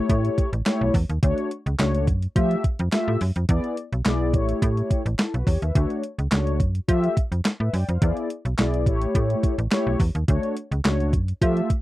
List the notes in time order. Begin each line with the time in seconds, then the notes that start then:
Already playing: A3 E4 G4 C#5
0.09 A2, kick, closed hi-hat
0.25 closed hi-hat
0.38 kick, closed hi-hat
0.53 A1, closed hi-hat
0.66 A3 E4 G4 C#5, snare, clap, closed hi-hat
0.81 B1
0.94 E2, kick, open hi-hat
1.10 D#2, closed hi-hat
1.23 D2 A3 D4 F#4 C#5, kick, closed hi-hat
1.38 closed hi-hat
1.51 closed hi-hat
1.66 C#2, closed hi-hat
1.79 C#2 A3 D4 F#4 C#5, snare, clap, closed hi-hat
1.95 closed hi-hat
2.07 F#2, kick, closed hi-hat
2.22 closed hi-hat
2.35 F3 A3 F4 G4 E5, kick, closed hi-hat
2.51 closed hi-hat
2.64 kick, closed hi-hat
2.79 F2, closed hi-hat
2.92 A3 F4 G4 E5, snare, clap, closed hi-hat
3.08 A2
3.21 F#2, open hi-hat
3.36 F2, closed hi-hat
3.49 E2 B3 E4 G#4 D5, kick, closed hi-hat
3.64 closed hi-hat
3.77 closed hi-hat
3.92 B1, closed hi-hat
4.05 B1 B3 E4 G#4 D5, snare, clap, closed hi-hat
4.33 A1 A3 E4 G4 C#5, kick, closed hi-hat
4.49 closed hi-hat
4.62 A2, kick, closed hi-hat
4.77 closed hi-hat
4.91 kick, closed hi-hat
5.06 A1, closed hi-hat
5.19 E4 A4, snare, clap, closed hi-hat
5.33 B1 F#4 B4, closed hi-hat
5.46 E2 G4 C#5, kick, open hi-hat
5.62 D#2 B4 E5, closed hi-hat
5.74 D2 A3 D4 F#4 C#5, kick, closed hi-hat
5.90 closed hi-hat
6.03 closed hi-hat
6.19 C#2, closed hi-hat
6.31 C#2 A3 D4 F#4 C#5, snare, clap, closed hi-hat
6.47 closed hi-hat
6.60 F#2, kick, closed hi-hat
6.75 closed hi-hat
6.88 F3 A3 F4 G4 E5, kick, closed hi-hat
7.04 closed hi-hat
7.17 kick, closed hi-hat
7.32 F2, closed hi-hat
7.45 snare, clap, closed hi-hat
7.60 A2 B4 E5
7.73 F#2 D5 G5, open hi-hat
7.88 F2 C5 F5, closed hi-hat
8.01 E2 B3 E4 G#4 D5, kick, closed hi-hat
8.17 closed hi-hat
8.30 closed hi-hat
8.45 B1, closed hi-hat
8.58 B1 B3 E4 G#4 D5, snare, clap, closed hi-hat
8.74 closed hi-hat
8.86 A1 A3 E4 G4 C#5, kick, closed hi-hat
9.02 closed hi-hat
9.15 A2, kick, closed hi-hat
9.30 closed hi-hat
9.43 kick, closed hi-hat
9.58 A1, closed hi-hat
9.71 A3 E4 G4 C#5, snare, clap, closed hi-hat
9.87 B1
10.00 E2, kick, open hi-hat
10.15 D#2, closed hi-hat
10.28 D2 A3 D4 F#4 C#5, kick, closed hi-hat
10.43 closed hi-hat
10.57 closed hi-hat
10.71 C#2, closed hi-hat
10.84 C#2 A3 D4 F#4 C#5, snare, clap, closed hi-hat
11.00 closed hi-hat
11.13 F#2, kick, closed hi-hat
11.28 closed hi-hat
11.41 F3 A3 F4 G4 E5, kick, closed hi-hat
11.57 closed hi-hat
11.70 kick, closed hi-hat